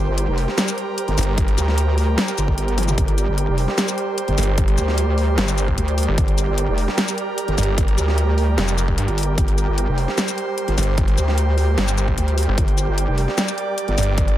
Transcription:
Already playing: supersaw synth G3 G4 A#4 C5, analog synth pad G4
0.04 wobble bass G1, analog synth pad A#4
0.18 closed hi-hat
0.28 wobble bass F1
0.38 open hi-hat
0.48 snare
0.58 snare, closed hi-hat, shaker
0.68 shaker
0.78 closed hi-hat
0.98 closed hi-hat
1.08 wobble bass G1, closed hi-hat
1.18 detuned saw bass G1, open hi-hat, shaker
1.23 closed hi-hat
1.38 kick, closed hi-hat
1.48 closed hi-hat
1.58 wobble bass D2, closed hi-hat, shaker
1.68 snare
1.78 closed hi-hat
1.98 open hi-hat
2.18 snare, closed hi-hat
2.28 shaker
2.38 wobble bass G1, closed hi-hat, shaker
2.48 kick
2.58 closed hi-hat
2.68 closed hi-hat
2.78 open hi-hat, high tom
2.83 closed hi-hat
2.88 mid tom, shaker
2.98 wobble bass G1, supersaw synth D5, kick, closed hi-hat
3.08 closed hi-hat
3.18 closed hi-hat, shaker
3.24 wobble bass G1, analog synth pad C5
3.38 closed hi-hat
3.48 wobble bass F1
3.58 open hi-hat
3.68 snare
3.78 snare, closed hi-hat, shaker
3.88 shaker
3.98 closed hi-hat
4.18 closed hi-hat
4.28 wobble bass G1, closed hi-hat
4.38 detuned saw bass G1, open hi-hat, shaker
4.43 closed hi-hat
4.58 kick, closed hi-hat
4.68 closed hi-hat
4.78 wobble bass D2, closed hi-hat, shaker
4.88 snare
4.98 closed hi-hat
5.18 open hi-hat
5.38 detuned saw bass G1, snare, closed hi-hat
5.48 shaker
5.58 closed hi-hat, shaker
5.68 kick
5.78 wobble bass D2, closed hi-hat
5.88 closed hi-hat
5.98 open hi-hat
6.03 closed hi-hat
6.08 detuned saw bass G1
6.18 wobble bass G1, kick, closed hi-hat
6.28 closed hi-hat
6.38 closed hi-hat, shaker
6.44 wobble bass G1, analog synth pad A#4
6.58 closed hi-hat
6.68 wobble bass F1
6.78 open hi-hat
6.88 snare
6.98 snare, closed hi-hat, shaker
7.08 shaker
7.18 closed hi-hat
7.38 closed hi-hat
7.48 wobble bass G1, closed hi-hat
7.58 detuned saw bass G1, open hi-hat, shaker
7.63 closed hi-hat
7.78 kick, closed hi-hat
7.88 closed hi-hat
7.98 wobble bass D2, closed hi-hat, shaker
8.08 snare
8.18 closed hi-hat
8.38 open hi-hat
8.58 detuned saw bass F1, snare, closed hi-hat
8.68 shaker
8.78 closed hi-hat, shaker
8.88 kick
8.98 detuned saw bass G2, closed hi-hat
9.08 wobble bass G1, closed hi-hat
9.18 open hi-hat
9.23 closed hi-hat
9.38 wobble bass G1, supersaw synth G5, kick, closed hi-hat
9.48 closed hi-hat
9.58 closed hi-hat, shaker
9.64 wobble bass G1, analog synth pad C5
9.78 closed hi-hat
9.88 wobble bass F1
9.98 open hi-hat
10.08 snare
10.18 snare, closed hi-hat, shaker
10.28 shaker
10.38 closed hi-hat
10.58 closed hi-hat
10.68 wobble bass G1, closed hi-hat
10.78 detuned saw bass G1, open hi-hat, shaker
10.83 closed hi-hat
10.98 kick, closed hi-hat
11.08 closed hi-hat
11.18 wobble bass D2, closed hi-hat, shaker
11.28 snare
11.38 closed hi-hat
11.58 open hi-hat
11.78 detuned saw bass G1, snare, closed hi-hat
11.88 shaker
11.98 closed hi-hat, shaker
12.08 kick
12.18 wobble bass D2, closed hi-hat
12.28 closed hi-hat
12.38 open hi-hat
12.43 closed hi-hat
12.48 detuned saw bass G1
12.58 wobble bass G1, kick, closed hi-hat
12.68 closed hi-hat
12.78 closed hi-hat, shaker
12.84 wobble bass G1, analog synth pad D5
12.98 closed hi-hat
13.08 wobble bass F1
13.18 open hi-hat
13.28 snare
13.38 snare, closed hi-hat, shaker
13.48 shaker
13.58 closed hi-hat
13.78 closed hi-hat
13.88 wobble bass G1, closed hi-hat
13.98 detuned saw bass G1, open hi-hat, shaker
14.03 closed hi-hat
14.18 kick, closed hi-hat
14.28 closed hi-hat

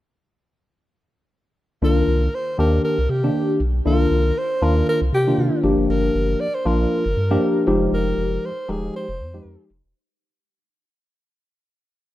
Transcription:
1.82 sub bass C2, tine electric piano D#3 A#3 D4 F4, alto saxophone A#4
2.08 sub bass C2
2.34 alto saxophone C5
2.58 sub bass D#2, tine electric piano D#3 A#3 D4 G4, alto saxophone A#4
2.84 alto saxophone A#4
2.98 sub bass C2
3.09 sub bass C3, alto saxophone G4
3.23 tine electric piano D#3 A#3 D4 G4
3.60 sub bass B1
3.85 sub bass C2, tine electric piano D#3 A#3 D4 E4, alto saxophone A#4
3.92 tine electric piano F4
4.11 sub bass C2
4.38 alto saxophone C5
4.62 sub bass D#2, tine electric piano D#3 A#3 D4 F4, alto saxophone A#4
4.89 alto saxophone A#4
5.01 sub bass C2
5.13 sub bass C3, alto saxophone G4
5.27 tine electric piano D#3 A#3 D4 F4
5.38 sub bass C3
5.63 sub bass G1, tine electric piano F3 A#3 D4 G4
5.78 sub bass F#1
5.89 sub bass G1, alto saxophone A#4
6.15 sub bass G1
6.40 alto saxophone D5
6.54 alto saxophone C5
6.65 sub bass A#1, tine electric piano F3 A#3 D4 F4, alto saxophone A#4
7.06 sub bass G1
7.17 sub bass G2
7.30 tine electric piano F3 A#3 D4 G4
7.67 sub bass F1, tine electric piano F3 G#3 D#4 G4
7.92 sub bass F1, alto saxophone A#4
8.18 sub bass F1
8.45 alto saxophone C5
8.69 sub bass D#1, tine electric piano F3 G#3 D#4 G4, alto saxophone G#4
8.96 alto saxophone C5
9.09 sub bass F1
9.20 sub bass F2
9.34 tine electric piano F3 G#3 D#4 G4
9.45 sub bass F2
9.70 sub bass F1
9.85 sub bass E1

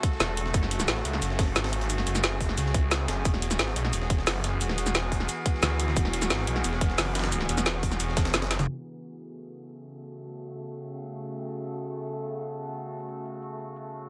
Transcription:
Already playing: synth drone C#3 A3 F#4 A4
0.03 kick, closed hi-hat
0.12 snare
0.20 detuned saw bass E1, snare, closed hi-hat, shaker
0.37 closed hi-hat
0.46 snare
0.54 detuned saw bass F#1, synth drone G#4, kick, closed hi-hat, shaker
0.63 snare
0.71 closed hi-hat
0.80 snare, shaker
0.88 detuned saw bass A1, snare, closed hi-hat, shaker
0.97 snare
1.05 detuned saw bass C#2, closed hi-hat
1.13 snare
1.22 detuned saw bass F#1, closed hi-hat, shaker
1.30 snare
1.39 kick, snare, closed hi-hat, open hi-hat
1.56 detuned saw bass G#1, snare, closed hi-hat, shaker
1.64 snare, open hi-hat
1.73 closed hi-hat
1.81 snare, closed hi-hat
1.90 closed hi-hat, shaker
1.98 snare
2.07 detuned saw bass F#1, closed hi-hat, shaker
2.15 snare, shaker
2.24 snare, closed hi-hat, shaker
2.41 kick, snare, closed hi-hat, open hi-hat
2.49 snare
2.57 detuned saw bass C#2, closed hi-hat, shaker
2.66 snare
2.74 kick, closed hi-hat
2.91 snare, closed hi-hat, shaker
3.08 detuned saw bass F#1, snare, closed hi-hat
3.25 detuned saw bass E1, synth drone E3 B3 F#4, kick, closed hi-hat, shaker
3.34 snare
3.42 closed hi-hat
3.51 snare, shaker
3.59 detuned saw bass G#1, snare, closed hi-hat, shaker
3.68 snare
3.76 detuned saw bass B1, closed hi-hat
3.85 snare
3.93 detuned saw bass E1, closed hi-hat, shaker
4.02 snare
4.10 kick, closed hi-hat
4.19 snare
4.27 detuned saw bass F#1, snare, closed hi-hat, open hi-hat, shaker
4.44 snare, closed hi-hat
4.61 closed hi-hat, shaker
4.69 snare
4.78 detuned saw bass E1, closed hi-hat, shaker
4.86 snare, shaker
4.95 snare, closed hi-hat, shaker
5.12 kick, snare, closed hi-hat, open hi-hat
5.20 snare
5.29 closed hi-hat, shaker
5.46 kick, closed hi-hat
5.54 snare
5.63 detuned saw bass D2, snare, closed hi-hat, shaker
5.80 closed hi-hat
5.88 snare
5.96 detuned saw bass E1, kick, closed hi-hat, shaker
6.05 snare
6.13 closed hi-hat
6.22 snare, shaker
6.30 detuned saw bass G#1, snare, closed hi-hat, shaker
6.39 snare
6.47 detuned saw bass B1, closed hi-hat
6.56 snare
6.64 detuned saw bass E1, closed hi-hat, shaker
6.73 snare
6.81 kick, closed hi-hat
6.90 snare
6.98 detuned saw bass F#1, snare, closed hi-hat, open hi-hat, shaker
7.15 snare, closed hi-hat
7.19 snare, closed hi-hat
7.24 snare, closed hi-hat
7.32 closed hi-hat, shaker
7.41 snare
7.49 detuned saw bass E1, closed hi-hat, shaker
7.58 snare, shaker
7.66 snare, closed hi-hat, shaker
7.83 kick, snare, closed hi-hat, open hi-hat
7.92 snare, shaker
8.00 detuned saw bass E1, closed hi-hat, shaker
8.08 snare
8.17 kick, snare, closed hi-hat, shaker
8.25 snare, closed hi-hat
8.34 detuned saw bass F#1, snare, closed hi-hat, shaker
8.42 snare, closed hi-hat
8.51 snare, closed hi-hat
8.59 snare, closed hi-hat, mid tom, shaker
8.68 synth drone C#3 A3 F#4 A4, shaker
8.93 shaker
9.02 shaker
9.35 shaker
9.69 shaker
10.03 shaker
10.29 shaker
10.37 shaker
10.54 open hi-hat
10.63 shaker
10.71 shaker
10.88 shaker
11.05 shaker
11.39 shaker
11.64 shaker
11.73 shaker
12.07 shaker
12.41 shaker
12.75 shaker
13.00 shaker
13.08 shaker
13.25 open hi-hat
13.34 shaker
13.42 shaker
13.59 shaker
13.76 shaker

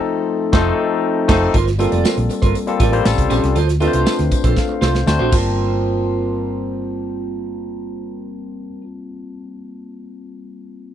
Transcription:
Already playing: tine electric piano F3 A3 C4 D#4 A4
0.53 fingered electric bass F1, tine electric piano F3 A3 C4 D#4 A4, clean electric guitar D#4 A4 C5, kick, snare
1.28 fingered electric bass F1, tine electric piano F3 A3 C4 D#4 A4, clean electric guitar D#4 A4 C5, kick, snare, crash
1.54 fingered electric bass G1, clean electric guitar F4 A#4 C5, kick, closed hi-hat, tambourine
1.67 muted clean electric guitar stroke, snare, closed hi-hat
1.79 tine electric piano G3 A#3 C4 F4 A4, clean electric guitar F4 A#4 C5, closed hi-hat, tambourine
1.92 fingered electric bass F1, clean electric guitar F4 A#4 D5, closed hi-hat
2.04 clean electric guitar F4 A#4 C5, snare, tambourine
2.17 fingered electric bass A#1, muted clean electric guitar stroke, closed hi-hat
2.30 muted clean electric guitar stroke, closed hi-hat, tambourine
2.42 fingered electric bass G1, clean electric guitar F4 A#4 C5, kick, closed hi-hat
2.55 muted clean electric guitar stroke, closed hi-hat, tambourine
2.67 tine electric piano G3 A#3 C4 F4 A4, muted clean electric guitar stroke, closed hi-hat
2.80 fingered electric bass A1, clean electric guitar F4 A#4 D5, kick, closed hi-hat, tambourine
2.92 tine electric piano G3 A#3 C4 F4 C5, muted clean electric guitar stroke, closed hi-hat
3.05 fingered electric bass A1, tine electric piano G3 C4 C#4 F4 A4, snare, tambourine
3.18 fingered electric bass C2, muted clean electric guitar stroke, kick, closed hi-hat
3.30 fingered electric bass A#1, clean electric guitar C#4 G4 C5, closed hi-hat, tambourine
3.43 fingered electric bass C2, muted clean electric guitar stroke, snare, closed hi-hat
3.56 fingered electric bass D2, clean electric guitar F4 A4 C5, closed hi-hat, tambourine
3.69 muted clean electric guitar stroke, snare, closed hi-hat
3.80 tine electric piano A3 C4 D4 F4 B4, clean electric guitar F4 A4 D5, closed hi-hat, tambourine
3.88 tine electric piano C5
3.93 fingered electric bass C2, clean electric guitar F4 A4 C5, closed hi-hat
4.06 clean electric guitar F4 A4 C5, snare, tambourine
4.19 fingered electric bass D2, muted clean electric guitar stroke, snare, closed hi-hat
4.31 muted clean electric guitar stroke, kick, closed hi-hat, tambourine
4.44 fingered electric bass A#1, clean electric guitar F4 A4 C5, kick, closed hi-hat
4.56 tine electric piano A4 F5, muted clean electric guitar stroke, kick, snare, tambourine
4.69 muted clean electric guitar stroke
4.81 fingered electric bass C2, clean electric guitar F4 A4 C5, tine electric piano C5, snare, tambourine
4.94 muted clean electric guitar stroke, snare
5.07 fingered electric bass D2, tine electric piano A3 C4 D4 F#4 C5, muted clean electric guitar stroke, snare, tambourine
5.19 fingered electric bass A#1, clean electric guitar D4 F#4 C5
5.30 fingered electric bass G1, tine electric piano G3 A#3 C4 F4, clean electric guitar F4, kick, crash, tambourine
5.34 clean electric guitar A#4 C5, tine electric piano A5

